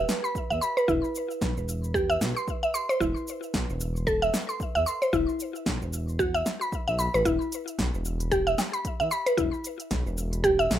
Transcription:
Already playing: B4
0.09 snare, cabasa
0.24 B5, cabasa
0.35 kick, cabasa
0.50 E2 E5, cabasa
0.61 B5, cabasa
0.77 B4, cabasa
0.88 E1 E4, kick, cabasa
1.04 cabasa
1.15 cabasa
1.31 cabasa
1.41 B1, kick, snare, cabasa
1.57 E1, cabasa
1.69 cabasa
1.84 cabasa
1.94 G4, kick, cabasa
2.10 E5, cabasa
2.21 B1, snare, cabasa
2.37 C6, cabasa
2.48 kick, cabasa
2.63 E5, cabasa
2.74 C6, cabasa
2.89 C5, cabasa
3.00 E1 E4, kick, cabasa
3.16 cabasa
3.28 cabasa
3.43 cabasa
3.54 B1, kick, snare, cabasa
3.69 E1, cabasa
3.81 cabasa
3.96 cabasa
4.07 A4, kick, cabasa
4.22 E5, cabasa
4.34 snare, cabasa
4.49 C6, cabasa
4.60 kick, cabasa
4.75 E2 E5, cabasa
4.86 C6, cabasa
5.02 C5, cabasa
5.13 E1 E4, kick, cabasa
5.29 cabasa
5.40 cabasa
5.55 cabasa
5.66 B1, kick, snare, cabasa
5.82 E1, cabasa
5.93 cabasa
6.09 cabasa
6.19 F#4, kick, cabasa
6.34 E5, cabasa
6.46 snare, cabasa
6.61 B5, cabasa
6.72 kick, cabasa
6.88 B1 E5, cabasa
6.99 B5, cabasa
7.14 A1 B4, cabasa
7.25 E1 E4, kick, closed hi-hat, cabasa
7.41 cabasa
7.52 closed hi-hat, cabasa
7.68 closed hi-hat, cabasa
7.79 B1, kick, snare, closed hi-hat, cabasa
7.94 E1, cabasa
8.05 cabasa
8.20 closed hi-hat, cabasa
8.31 G4, kick, closed hi-hat, cabasa
8.47 E5, cabasa
8.58 snare, cabasa, low woodblock
8.73 B5, closed hi-hat, cabasa
8.85 kick, closed hi-hat, cabasa
9.00 E2 E5, cabasa
9.11 B5, cabasa
9.26 B4, closed hi-hat, cabasa
9.37 E1 E4, kick, closed hi-hat, cabasa
9.53 cabasa
9.64 closed hi-hat, cabasa
9.80 closed hi-hat, cabasa
9.91 B1, kick, snare, closed hi-hat, cabasa
10.06 E1, cabasa
10.18 cabasa
10.33 closed hi-hat, cabasa
10.44 G4, kick, closed hi-hat, cabasa
10.59 E5, cabasa
10.71 B1, snare, cabasa

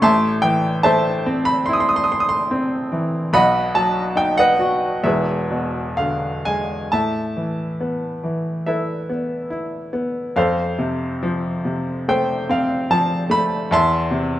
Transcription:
0.02 A1 A2 E5 A5 C6
0.42 E3 G5
0.83 A3 C5 E5 A5
1.26 C4
1.45 B5
1.66 E4 C6
1.73 D#6
1.80 C6
1.89 D#6
1.96 C6
2.04 D#6
2.12 C6
2.20 D#6
2.29 C6
2.51 C4
2.92 E3
3.33 B1 B2 D#5 F#5 B5
3.75 F#3 A5
4.16 D#4 G5
4.38 B4 D#5 F#5
4.59 F#4
5.04 E1 E2 G#4 B4 E5
5.50 B2
5.97 D3 F5
6.45 G#3 G#5
6.92 A2 E5 A5
7.37 E3
7.81 B3
8.24 E3
8.66 E4 A4 B4 E5
9.10 B3
9.50 E4
9.93 B3
10.36 F2 A4 C5 F5
10.79 C3
11.23 F3
11.65 C3
12.08 A3 C5 G5
12.49 C4 F5
12.91 F3 A5
13.30 A3 B5
13.71 E2 E5 A5 C6
14.11 C3

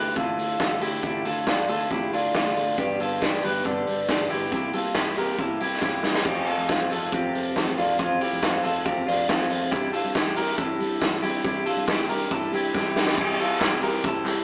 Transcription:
Already playing: D2 D4 E4 G4 A4 B4
0.15 D2 D3 F3 D4 E4 F4 A4, kick, closed hi-hat
0.37 D2 D4 E4 A4, open hi-hat
0.59 D2 F3 D4 E4, kick, snare, closed hi-hat
0.80 D2 D4 E4 G4 A4, open hi-hat
1.03 D2 D3 F3 D4 E4 G4 A4, kick, closed hi-hat
1.24 D2 D4 E4 F4 A4, open hi-hat
1.46 F3 D4 E4 F4 A4, kick, snare, closed hi-hat
1.68 D2 D4 E4 F4 A4, open hi-hat
1.90 D2 D3 F3 D4 E4 G4 A4, kick, closed hi-hat
2.11 D2 D4 E4 F4 A4, open hi-hat
2.32 D2 F3 D4 E4 F4 A4, kick, snare, closed hi-hat
2.54 D2 D4 E4 A4, open hi-hat
2.76 G1 G2 D3 G3 B3 D4 G4, kick, closed hi-hat
2.97 G1 G3 B3 D4 G4 A4, open hi-hat
3.02 F4
3.20 G3 B3 D4 G4, kick, snare, closed hi-hat
3.41 G1 G3 B3 D4 G4 B4, open hi-hat
3.45 G4
3.64 G1 G2 D3 G3 B3 D4 G4 A4, kick, closed hi-hat
3.86 G1 G3 B3 D4 G4, open hi-hat
4.07 G1 G3 B3 D4 G4, kick, snare, closed hi-hat
4.29 G1 G3 B3 D4 E4 G4, open hi-hat
4.51 C2 C3 G3 A#3 E4 G4, kick, closed hi-hat
4.73 C2 A#3 E4 F4 G4 A4, open hi-hat
4.94 G3 A#3 E4, kick, snare, closed hi-hat
4.98 G4
5.16 C2 A#3 E4 G4 A#4, open hi-hat
5.38 C2 C3 G3 A#3 E4 G4 A4, kick, closed hi-hat
5.60 C2 A#3 E4 G4, open hi-hat
5.81 C2 G3 A#3 E4 G4, kick, snare
6.03 C2 A#3 E4 G4, snare
6.14 snare
6.24 F1 F3 C4 F4 G4 A4, kick, crash
6.46 C4 F4 A4, open hi-hat
6.58 F1
6.67 F1 F3 C4 F4 A4, kick, snare, closed hi-hat
6.89 F1 C4 F4 A4, open hi-hat
7.11 F1 F3 C4 F4 G4 A4, kick, closed hi-hat
7.34 F1 C4 F4 A4, open hi-hat
7.55 F1 F3 C4 F4 A4, kick, snare, closed hi-hat
7.77 F1 C4 D4 F4 A4, open hi-hat
7.98 F1 F3 C4 F4 A4, kick, closed hi-hat
8.19 C4 E4 F4 G4 A4, open hi-hat
8.33 F1
8.41 F1 F3 C4 F4 A4, kick, snare, closed hi-hat
8.62 F1 C4 F4 A4, open hi-hat
8.84 F1 F3 C4 F4 G4 A4, kick, closed hi-hat
9.05 F1 C4 D4 F4 A4, open hi-hat
9.28 F1 F3 C4 F4 A4, kick, snare, closed hi-hat
9.50 F1 C4 F4 A4, open hi-hat
9.72 C2 C3 G3 D4 E4 G4, kick, closed hi-hat
9.92 D4 E4 F4 G4 A4, open hi-hat
10.05 C2
10.13 C2 G3 D4 E4 G4, kick, snare, closed hi-hat
10.35 C2 D4 E4 G4 A#4, open hi-hat
10.57 C2 C3 G3 D4 E4 G4 A4, kick, closed hi-hat
10.79 C2 D4 E4 G4, open hi-hat
10.99 C2 G3 D4 E4 G4, kick, snare, closed hi-hat
11.22 C2 D4 E4 G4, open hi-hat
11.44 C2 C3 G3 D4 E4 G4, kick, closed hi-hat
11.65 D4 E4 F4 G4 A4, open hi-hat
11.77 C2
11.87 C2 G3 D4 E4 G4, kick, snare, closed hi-hat
12.08 C2 D4 E4 G4 A#4, open hi-hat
12.31 C2 C3 G3 D4 E4 G4 A4, kick, closed hi-hat
12.52 C2 D4 E4 G4, open hi-hat
12.73 C2 G3 D4 E4 G4, kick, snare
12.94 C2 D4 E4 G4, snare
13.07 snare
13.17 C2 C3 G3 C4 E4 G4, kick, crash
13.38 C4 E4 F4 G4 A4, open hi-hat
13.60 C2 G3 C4 E4 G4, kick, snare, clap, closed hi-hat
13.81 C2 C4 E4 G4 A#4, open hi-hat
14.03 C3 G3 C4 E4 G4 A4, kick, closed hi-hat
14.25 C2 C4 E4 G4, clap, open hi-hat

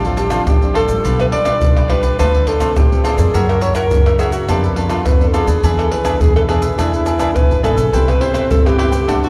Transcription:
Already playing: A1 A2 F3 C4 D4
0.05 F4 A4 C5 D5, pandeiro, shaker
0.17 F4 G4 A4 C5 D5, pandeiro, shaker
0.30 F3 C4 D4 F4 A4 C5 D5, pandeiro, tamborim, shaker, surdo
0.47 A1 A2 G4, pandeiro, tamborim, shaker, surdo
0.62 F3 C4 D4, pandeiro, shaker
0.74 F4 A4 C5 D5, pandeiro, tamborim
0.88 A1 G3 D4 F4 A4 C5 D5, pandeiro, shaker, surdo
1.04 B1 B2 F4 G4 B4 D5, pandeiro, shaker, surdo
1.20 B4, pandeiro, tamborim, shaker
1.31 F4 G4 B4 D5, pandeiro
1.45 G3 D4 F4 G4 B4 D5, pandeiro, tamborim, shaker, surdo
1.61 B1 B2, pandeiro, shaker, surdo
1.76 G4 B4 D5, pandeiro, tamborim, shaker
1.88 G3 D4 F4 G4 B4 D5, pandeiro, tamborim, surdo
2.02 G4 B4 D5, pandeiro, shaker, surdo
2.19 D2 D3 A3 C4 F4 A4 B4 C5 D5, pandeiro, tamborim, shaker, surdo
2.34 A4 C5 D5, pandeiro, shaker
2.47 F4 A4 C5 D5, pandeiro
2.60 A3 C4 F4 A4 C5 D5, pandeiro, tamborim, shaker, surdo
2.76 D2 A2 G4, pandeiro, tamborim, shaker, surdo
2.92 A3 C4 F4, pandeiro, shaker
3.04 F4 G#4 A4 C5 D5, pandeiro, tamborim, shaker
3.17 F2 C#4 E4 A4 A#4 C5 D5, pandeiro, shaker, surdo
3.34 F#2 F#3 F#4 A#4 C#5 E5, pandeiro, shaker, surdo
3.49 A#4, pandeiro, tamborim, shaker
3.61 C#4 E4 F#4 A#4 C#5 E5, pandeiro, shaker
3.75 F#4 A#4 C#5 E5, pandeiro, tamborim, shaker, surdo
3.91 F#2 C#3, pandeiro, shaker, surdo
4.06 C#4 E4 A#4 C#5 E5, pandeiro, tamborim, shaker
4.19 F#4 G#4 A#4 C#5 E5, pandeiro, tamborim, shaker
4.32 F#4 A#4 C#5 E5, pandeiro, shaker, surdo
4.48 F2 F3 B3 D4 F4 G4 A4 B4 D5, pandeiro, tamborim, shaker, surdo
4.63 A4 B4 D5, pandeiro, shaker
4.76 B3 D4 F4 A4 B4 D5, pandeiro
4.90 F4 A4 B4 D5, pandeiro, tamborim, shaker, surdo
5.06 F2 F3 B4, pandeiro, tamborim, shaker, surdo
5.21 B3 D4 A4, pandeiro, shaker
5.27 A4
5.33 F4 G#4 A4 B4 D5, pandeiro, tamborim, shaker
5.47 D#2 B3 D4 G#4 A4 B4 D5, pandeiro, shaker, surdo
5.63 E2 E3 D4 G#4 B4 E5, pandeiro, shaker, surdo
5.79 A4, pandeiro, tamborim, shaker
5.91 D4 G#4 B4 E5, pandeiro
6.04 B3 D4 G#4 B4 E5, pandeiro, tamborim, shaker, surdo
6.20 E2 B2 G#4, pandeiro, shaker, surdo
6.36 G#4 A4 B4 E5, pandeiro, tamborim, shaker
6.48 B3 D4 G#4 B4 E5, pandeiro, tamborim
6.62 G#4 B4 E5, pandeiro, shaker, surdo
6.78 E2 E3 B3 D4 E4 G#4 B4 E5, pandeiro, tamborim, shaker, surdo
6.93 G#4 B4 E5, pandeiro, shaker
7.06 D4 G#4 B4 E5, pandeiro, shaker
7.19 B3 D4 G#4 B4 E5, pandeiro, tamborim, shaker, surdo
7.36 D1 B2 B4, pandeiro, tamborim, shaker, surdo
7.51 E1, pandeiro, shaker
7.63 G#1 B3 D4 G#4 A4 B4 E5, pandeiro, tamborim, shaker
7.77 B1 G#4 B4 E5, pandeiro, shaker, surdo
7.93 C2 C3 B3 C4 E4 G4 B4 C5 G5, pandeiro, shaker, surdo
8.08 B4, pandeiro, tamborim, shaker
8.20 B3 E4 G4 B4 C5 G5, pandeiro
8.33 E4 B4 C5 G5, pandeiro, tamborim, shaker, surdo
8.50 C#2 G2 A4, pandeiro, shaker, surdo
8.65 B3 E4 G4 B4 C5 G5, pandeiro, tamborim, shaker
8.78 E4 G4 B4 C5 G5, pandeiro, tamborim
8.91 A3 C4 F#4 B4 C5 G5, pandeiro, shaker, surdo
9.08 D2 D3 D4 F#4 A4 C5 D5, pandeiro, tamborim, shaker, surdo
9.22 F#4 A4 C5 D5, pandeiro, shaker

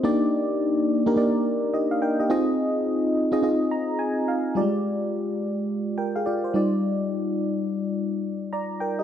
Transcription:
0.03 A#3 D4 D#4 G4 D5
1.06 A#3 D4 D#4 G4 A#4
1.16 A#3 D4 D#4 G4 D5
1.74 G4 D#5
1.91 F5
2.02 A#4 G5
2.19 G4 D#5
2.30 C4 D#4 F4 G#4 D#5
3.32 C4 D#4 F4 G#4 D#5
3.42 C4 D#4 F4 G#4 D#5
3.71 A#5
3.99 G#5
4.28 F5
4.55 G3 F4 G4 D5
4.61 G#3
5.98 A#4 G5
6.16 G#4 F5
6.26 F4 D5
6.44 C5
6.54 G3 D#4 F4 D5
8.53 D5 A#5
8.80 A#4 G5
8.99 G4 D#5

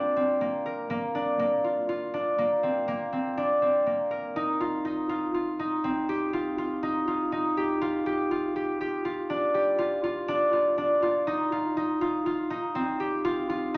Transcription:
Already playing: A#3 C4 D4 F4
0.16 C4
0.41 A#3
0.66 A#4
0.90 A#3
1.15 D4
1.39 A#3
1.64 F4
1.89 F4
2.14 D4
2.38 A#3
2.63 C4
2.88 A#3
3.13 C4
3.37 D4
3.62 C4
3.86 A#3
4.11 A#4
4.36 D#4
4.60 F4
4.85 D#4
5.09 F4
5.34 F4
5.59 D#4
5.84 C4
6.09 G4
6.33 F4
6.58 F4
6.83 D#4
7.08 F4
7.32 D#4
7.57 G4
7.81 F4
8.06 G4
8.31 F4
8.56 G4
8.81 G4
9.05 F4
9.30 D4
9.54 G4
9.79 F4
10.04 F4
10.28 D4
10.53 F4
10.78 D4
11.02 F4
11.27 D#4
11.52 F4
11.77 D#4
12.01 F4
12.26 F4
12.50 D#4
12.75 C4
13.00 G4
13.25 F4
13.49 F4

